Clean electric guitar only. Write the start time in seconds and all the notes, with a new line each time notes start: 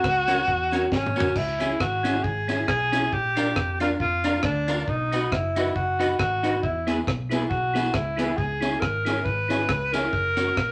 0.28 C#4 F#4 A#4
0.72 C#4 F#4 A#4
1.16 C#4 F#4 A#4
1.61 C#4 E4 G#4
2.04 C#4 E4 G#4
2.49 C#4 E4 G#4
2.92 C#4 E4 G#4
3.37 D4 F4 A#4
3.81 D4 F4 A#4
4.24 D4 F4 A#4
4.68 D4 F4 A#4
5.13 D#4 F#4 B4
5.57 D#4 F#4 B4
5.99 D#4 F#4 B4
6.43 D#4 F#4 B4
6.87 B3 E4 G#4
7.32 B3 E4 G#4
7.75 B3 E4 G#4
8.19 B3 E4 G#4
8.62 C#4 E4 G#4
9.07 C#4 E4 G#4
9.50 C#4 E4 G#4
9.94 C#4 E4 G#4
10.37 C#4 F#4 A#4